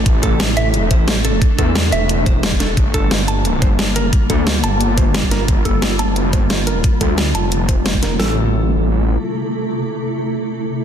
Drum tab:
HH |x-x-x-x-x-x-x-x-|x-x-x-x-x-x-x-x-|x-x-x-x-x-x-x-x-|x-x-x-x-x-x-x-x-|
SD |----o-------o---|----o-------o-o-|----o-------o---|----o-------o-o-|
BD |o-o-------o-----|o-o-------o--o--|o-o-------o-----|o-o-------o--o--|

HH |x-x-x-x-x-x-x-x-|x-x-x-x-x-x-x-x-|----------------|----------------|
SD |----o-------o---|----o-------o-o-|o---------------|----------------|
BD |o-o-------o-----|o-o-------o--o--|----------------|----------------|